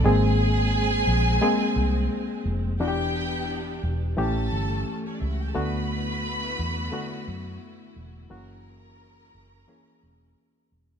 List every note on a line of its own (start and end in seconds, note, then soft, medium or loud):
0.03 1.03 G#1 loud
0.03 2.76 G#3 medium
0.03 1.34 G#3 medium
0.03 1.34 A#3 medium
0.03 2.77 C4 medium
0.03 1.35 C4 medium
0.03 2.41 G#4 loud
0.03 1.35 G#4 loud
0.03 2.42 G#5 loud
1.07 1.38 A#1 medium
1.42 2.71 G#3 medium
1.42 2.72 A#3 medium
1.42 2.72 C4 medium
1.42 2.72 G#4 loud
1.76 2.06 C2 loud
2.45 2.79 F1 loud
2.79 3.79 E1 medium
2.79 4.16 E3 medium
2.79 4.09 E3 medium
2.79 4.16 B3 medium
2.79 4.10 B3 medium
2.79 4.17 D4 medium
2.79 4.10 D4 medium
2.79 2.88 F#4 medium
2.79 3.81 G4 medium
2.79 4.17 G4 medium
2.79 3.81 G5 loud
2.88 4.13 G4 loud
3.83 4.13 E1 medium
4.17 4.48 A1 loud
4.17 5.47 E3 medium
4.17 5.54 A3 medium
4.17 5.47 A3 medium
4.17 5.47 C#4 medium
4.17 5.55 C#4 medium
4.17 5.47 G4 loud
4.17 4.97 A4 medium
4.17 4.97 A5 loud
4.53 4.82 G1 medium
5.06 5.14 C#4 medium
5.06 5.13 C#5 medium
5.14 5.22 D4 medium
5.14 5.21 D5 medium
5.21 5.51 C#2 loud
5.21 5.30 E4 medium
5.21 5.30 E5 medium
5.31 5.40 F#4 medium
5.31 5.40 F#5 medium
5.41 5.48 G4 medium
5.41 5.48 G5 medium
5.48 5.56 A4 medium
5.48 5.56 A5 medium
5.54 6.55 D2 medium
5.54 8.28 D3 medium
5.54 6.84 D3 loud
5.54 6.84 A3 medium
5.54 8.28 A3 medium
5.54 8.28 B3 medium
5.54 6.85 B3 medium
5.54 11.00 E4 medium
5.54 8.28 F#4 medium
5.54 6.85 F#4 loud
5.54 7.93 B4 loud
5.54 7.93 B5 loud
6.59 6.89 E2 medium
6.92 8.22 D3 medium
6.92 8.22 A3 medium
6.92 8.22 B3 medium
6.92 8.23 F#4 medium
7.28 7.58 F#2 medium
7.96 8.26 E1 loud
8.30 9.30 F#1 medium
8.30 9.60 E3 medium
8.30 11.00 F#3 medium
8.30 9.60 A#3 medium
8.30 9.60 C#4 medium
8.30 11.00 C#4 medium
8.30 9.60 F#4 loud
8.30 11.00 G#4 medium
8.30 10.68 A#4 loud
8.30 11.00 A#4 medium
8.30 10.68 A#5 loud
9.35 9.64 F#1 medium
9.68 10.98 E3 medium
9.68 10.98 A#3 medium
9.68 10.98 C#4 medium
9.68 10.98 G#4 medium
10.03 10.33 E1 medium
10.72 11.00 E1 medium